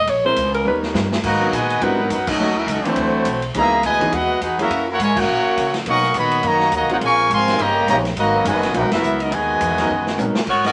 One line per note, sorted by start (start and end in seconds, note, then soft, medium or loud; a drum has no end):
0.00 0.11 D#5 loud
0.07 0.36 A#1 loud
0.07 0.25 C#5 loud
0.07 ride medium
0.25 0.35 G#3 medium
0.25 0.36 C4 medium
0.25 0.36 C#4 medium
0.25 0.36 E4 medium
0.25 0.36 A#4 medium
0.25 0.52 C5 loud
0.36 0.64 C#2 loud
0.36 hi-hat pedal medium
0.36 ride medium
0.54 0.65 A#4 loud
0.54 ride medium
0.65 0.93 D#2 medium
0.65 1.08 G3 medium
0.65 1.09 B3 medium
0.65 1.09 C#4 medium
0.65 1.09 D#4 medium
0.65 1.09 A#4 medium
0.65 0.78 B4 medium
0.83 snare medium
0.94 1.22 G2 loud
0.94 snare medium
0.94 hi-hat pedal medium
1.12 snare loud
1.24 1.51 G#2 medium
1.24 1.51 D#3 medium
1.24 1.51 F#3 medium
1.24 1.51 A#3 medium
1.24 1.51 F#4 medium
1.24 1.51 B4 medium
1.24 1.51 D#5 medium
1.24 1.51 A#5 medium
1.24 kick medium
1.24 crash loud
1.41 1.51 F#3 medium
1.41 1.51 B3 medium
1.41 1.52 C#4 medium
1.41 1.52 D#4 medium
1.41 1.52 A#4 medium
1.52 1.80 A#2 loud
1.52 1.82 B2 medium
1.52 1.82 D#3 medium
1.52 1.82 G#3 medium
1.52 1.82 F#4 medium
1.52 1.82 B4 medium
1.52 1.82 D#5 medium
1.52 1.82 G#5 loud
1.52 hi-hat pedal medium
1.52 ride medium
1.70 ride medium
1.81 2.09 G#2 medium
1.81 1.97 G3 medium
1.81 2.10 B3 medium
1.81 1.97 C4 medium
1.81 1.97 D4 medium
1.81 2.10 D#4 medium
1.81 1.98 E4 medium
1.81 2.09 F#4 medium
1.81 2.11 A#4 medium
1.81 2.11 B4 medium
1.81 1.98 B4 medium
1.81 2.11 F#5 medium
1.81 ride medium
1.99 2.24 F#3 medium
1.99 2.24 B3 medium
1.99 2.25 C#4 medium
1.99 2.25 D#4 medium
1.99 2.25 A#4 medium
2.10 2.38 F#2 loud
2.10 2.26 B3 medium
2.10 2.26 D#4 medium
2.10 2.27 D#4 medium
2.10 2.26 F#4 medium
2.10 2.27 A#4 medium
2.10 2.27 B4 medium
2.10 2.27 F#5 medium
2.10 hi-hat pedal medium
2.10 ride medium
2.27 2.57 F#3 medium
2.27 2.57 A3 medium
2.27 2.57 C#4 medium
2.27 2.56 D#4 medium
2.27 2.57 F#4 medium
2.27 2.57 A4 medium
2.27 2.57 D#5 loud
2.27 kick loud
2.27 crash loud
2.39 2.66 D#2 medium
2.39 2.55 F#3 medium
2.39 2.55 A3 medium
2.39 2.55 C#4 medium
2.39 2.55 D#4 medium
2.39 2.56 F#4 medium
2.57 2.69 C#4 medium
2.57 2.68 E4 medium
2.57 2.69 F#4 medium
2.57 2.69 A#4 medium
2.57 2.69 E5 medium
2.67 2.83 C#2 loud
2.67 2.85 F#3 medium
2.67 2.85 A3 medium
2.67 2.86 D#4 medium
2.67 2.86 D#5 medium
2.67 hi-hat pedal medium
2.67 ride medium
2.71 2.87 C#4 medium
2.71 2.86 F#4 medium
2.71 2.87 A4 medium
2.84 3.24 E3 medium
2.84 3.44 F#3 medium
2.84 3.24 A3 medium
2.84 3.44 A3 medium
2.84 3.44 C4 medium
2.84 3.24 C4 medium
2.84 3.24 D4 medium
2.84 3.44 E4 medium
2.84 3.44 F#4 medium
2.84 3.25 A4 medium
2.84 3.44 C5 loud
2.84 muted upright bass stroke soft
2.84 ride medium
2.96 3.24 D2 medium
2.96 ride medium
3.25 3.53 B1 medium
3.25 hi-hat pedal medium
3.25 ride medium
3.42 ride medium
3.54 3.82 C#2 medium
3.54 3.82 B2 medium
3.54 3.70 E3 medium
3.54 3.82 E3 medium
3.54 3.82 A#3 medium
3.54 3.71 B3 medium
3.54 3.71 C#4 medium
3.54 3.71 D#4 medium
3.54 3.82 G#4 medium
3.54 3.71 G#4 medium
3.54 3.83 D#5 medium
3.54 3.82 E5 medium
3.54 3.82 A#5 loud
3.54 ride medium
3.83 4.11 D2 loud
3.83 4.11 B2 medium
3.83 4.11 E3 medium
3.83 4.11 G#3 medium
3.83 4.11 E4 medium
3.83 4.11 B4 loud
3.83 4.11 D#5 medium
3.83 4.11 G#5 loud
3.83 hi-hat pedal medium
3.83 ride medium
4.00 4.11 E3 medium
4.00 4.11 B3 medium
4.00 4.11 C#4 medium
4.00 4.12 D#4 medium
4.00 4.12 G#4 medium
4.00 kick medium
4.00 ride medium
4.12 4.40 D#2 loud
4.12 4.42 G#3 medium
4.12 4.42 B3 medium
4.12 4.42 E4 medium
4.12 4.42 F#4 medium
4.12 4.42 B4 medium
4.12 4.42 D#5 loud
4.12 4.42 F#5 loud
4.12 ride medium
4.41 4.69 E2 medium
4.41 4.58 D#4 medium
4.41 4.58 F#4 medium
4.41 4.58 G#4 medium
4.41 4.58 B4 medium
4.41 4.58 F#5 medium
4.41 hi-hat pedal medium
4.41 ride medium
4.58 4.69 F#3 medium
4.58 4.69 A#3 medium
4.58 4.86 A#3 medium
4.58 4.69 C#4 medium
4.58 4.86 C#4 medium
4.58 4.87 C#4 medium
4.58 4.86 E4 medium
4.58 4.69 E4 medium
4.58 4.87 F#4 medium
4.58 4.70 G#4 medium
4.58 4.87 A#4 medium
4.58 4.87 E5 loud
4.58 ride medium
4.70 4.98 F#2 medium
4.70 ride medium
4.89 5.00 A#3 medium
4.89 5.00 C#4 medium
4.89 5.01 E4 medium
4.89 5.00 F#4 medium
4.89 5.01 A#4 medium
4.89 5.01 C#5 loud
4.89 5.01 F#5 loud
4.99 5.27 G#2 loud
4.99 5.15 G#3 medium
4.99 5.17 E4 medium
4.99 5.17 A#4 medium
4.99 5.17 C#5 loud
4.99 5.17 G#5 loud
4.99 hi-hat pedal medium
4.99 ride medium
5.17 5.74 A#3 loud
5.17 5.74 C#4 loud
5.17 5.75 E4 loud
5.17 5.74 F#4 loud
5.17 5.75 A#4 medium
5.17 5.75 C#5 medium
5.17 5.75 F#5 loud
5.17 kick loud
5.17 crash loud
5.28 5.44 A#2 loud
5.45 muted upright bass stroke soft
5.57 5.85 C#3 medium
5.57 hi-hat pedal medium
5.57 ride medium
5.74 snare medium
5.74 ride medium
5.86 6.14 B2 medium
5.86 6.02 F#3 medium
5.86 6.13 F#3 medium
5.86 6.13 A#3 medium
5.86 6.02 B3 medium
5.86 6.02 C#4 medium
5.86 6.13 C#4 medium
5.86 6.02 D#4 medium
5.86 6.02 A#4 medium
5.86 6.14 A#4 loud
5.86 6.14 D#5 loud
5.86 6.14 F#5 loud
5.86 6.14 C#6 loud
5.86 ride medium
6.03 snare soft
6.14 6.42 A#2 loud
6.14 6.44 D#3 medium
6.14 6.44 F#3 medium
6.14 6.44 B3 medium
6.14 6.45 F#4 medium
6.14 6.45 C#5 medium
6.14 hi-hat pedal medium
6.14 ride medium
6.18 6.45 D#5 medium
6.18 6.45 B5 loud
6.31 ride medium
6.43 6.71 F#2 loud
6.43 6.72 D#3 loud
6.43 6.73 F#3 medium
6.43 6.72 A#3 medium
6.43 6.74 F#4 medium
6.43 6.74 C#5 medium
6.43 6.74 D#5 medium
6.43 6.74 A#5 loud
6.43 ride medium
6.60 snare soft
6.72 6.82 D#2 medium
6.72 6.89 D#3 medium
6.72 6.89 F#3 medium
6.72 6.89 A#3 medium
6.72 6.90 F#4 medium
6.72 6.90 C#5 medium
6.72 6.90 D#5 medium
6.72 6.90 A#5 loud
6.72 hi-hat pedal medium
6.72 ride medium
6.82 6.91 B1 medium
6.89 7.00 A#1 medium
6.89 7.28 G#3 medium
6.89 6.96 A#3 medium
6.89 7.28 C4 medium
6.89 7.28 C#4 medium
6.89 6.96 D#4 medium
6.89 6.97 D#4 medium
6.89 7.28 F4 medium
6.89 6.96 F#4 medium
6.89 7.29 A#4 medium
6.89 6.97 A#4 medium
6.89 6.97 C#5 medium
6.89 6.97 F#5 loud
6.89 ride medium
7.01 7.29 A#1 loud
7.01 7.29 F3 medium
7.01 7.28 G#3 medium
7.01 7.29 C#4 loud
7.01 7.29 A#4 medium
7.01 7.29 F5 medium
7.01 7.30 G#5 loud
7.01 7.30 C#6 loud
7.01 ride medium
7.30 7.58 G#1 loud
7.30 7.59 F3 medium
7.30 7.59 G#3 medium
7.30 7.59 C4 medium
7.30 7.60 A#4 medium
7.30 7.60 F5 loud
7.30 7.60 G#5 loud
7.30 7.60 C6 loud
7.30 hi-hat pedal medium
7.30 ride medium
7.47 7.58 G3 medium
7.47 7.58 B3 medium
7.47 7.58 C#4 medium
7.47 7.58 D#4 medium
7.47 7.59 A#4 medium
7.47 snare medium
7.47 ride medium
7.58 7.86 G1 loud
7.58 7.88 C#3 medium
7.58 7.88 G3 medium
7.58 7.88 A#3 medium
7.58 7.89 G4 loud
7.58 7.88 C#5 medium
7.58 7.89 D#5 medium
7.58 7.88 A#5 loud
7.58 ride medium
7.88 8.16 A#1 loud
7.88 7.96 C#3 medium
7.88 8.03 G3 medium
7.88 7.96 G3 medium
7.88 7.96 A#3 medium
7.88 8.04 B3 medium
7.88 8.04 C#4 medium
7.88 8.04 D#4 medium
7.88 7.97 G4 medium
7.88 7.97 C#5 medium
7.88 8.04 C#5 medium
7.88 7.97 D#5 medium
7.88 7.97 A#5 loud
7.88 hi-hat pedal medium
7.88 ride medium
8.05 snare soft
8.05 ride medium
8.16 8.44 G#1 medium
8.16 8.45 D#3 medium
8.16 8.44 F#3 medium
8.16 8.44 A#3 medium
8.16 8.45 F#4 medium
8.16 8.44 B4 medium
8.16 8.45 D#5 loud
8.16 8.44 A#5 loud
8.16 ride medium
8.34 8.72 F#3 medium
8.34 8.73 B3 medium
8.34 8.72 C#4 medium
8.34 8.73 D#4 medium
8.34 8.73 A#4 medium
8.45 8.73 F#1 loud
8.45 8.73 B2 medium
8.45 8.73 D#3 medium
8.45 8.73 G#3 medium
8.45 8.73 F#4 medium
8.45 8.73 B4 medium
8.45 8.73 D#5 medium
8.45 8.73 G#5 loud
8.45 hi-hat pedal medium
8.45 ride medium
8.63 snare soft
8.63 ride medium
8.74 8.83 A#1 loud
8.74 8.92 B3 medium
8.74 8.92 D#4 medium
8.74 8.92 F#4 medium
8.74 8.91 A#4 medium
8.74 8.92 B4 medium
8.74 8.92 F#5 loud
8.74 ride medium
8.83 8.92 G#1 medium
8.92 9.02 F#1 medium
8.92 9.19 F#3 medium
8.92 9.19 B3 medium
8.92 9.19 E4 medium
8.92 9.19 F#4 medium
8.92 9.19 A#4 medium
8.92 9.19 E5 loud
8.92 snare medium
8.92 ride medium
9.02 9.31 C#2 loud
9.02 hi-hat pedal medium
9.20 9.33 F#3 medium
9.20 9.32 B3 medium
9.20 9.32 D#4 medium
9.20 9.32 F#4 medium
9.20 9.32 A#4 medium
9.20 9.31 D#5 medium
9.20 ride medium
9.31 9.60 D#2 medium
9.31 10.36 B2 medium
9.31 10.36 D#3 medium
9.31 10.36 G#3 medium
9.31 10.36 F#4 medium
9.31 10.36 B4 medium
9.31 10.36 D#5 medium
9.31 10.36 G#5 loud
9.31 ride medium
9.60 9.89 E2 loud
9.60 hi-hat pedal medium
9.60 ride medium
9.78 9.89 F#3 medium
9.78 9.89 B3 medium
9.78 9.89 C#4 medium
9.78 9.89 D#4 medium
9.78 9.89 A#4 medium
9.78 snare soft
9.78 ride medium
9.90 10.17 F#2 medium
10.07 snare medium
10.18 10.34 A#2 loud
10.18 10.34 F#3 medium
10.18 10.34 B3 medium
10.18 10.35 C#4 medium
10.18 10.35 D#4 medium
10.18 10.35 A#4 medium
10.18 hi-hat pedal medium
10.18 high tom medium
10.35 muted upright bass stroke soft
10.35 snare loud
10.47 10.72 G#2 medium
10.47 10.64 B3 medium
10.47 10.64 F#4 medium
10.47 10.64 A#4 medium
10.47 10.64 C#5 loud
10.47 kick medium
10.47 crash medium
10.64 10.72 F#3 medium
10.64 10.72 B3 medium
10.64 10.72 C#4 medium
10.64 10.72 D#4 medium
10.64 10.72 F#4 medium
10.64 10.72 A#4 medium
10.64 10.72 D#5 medium
10.64 snare medium
10.64 ride medium